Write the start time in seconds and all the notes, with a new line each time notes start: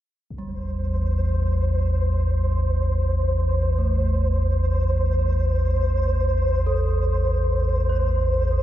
0.30 A1 E2 C5, impact
0.38 G3
3.78 A3
6.67 A4
7.89 C5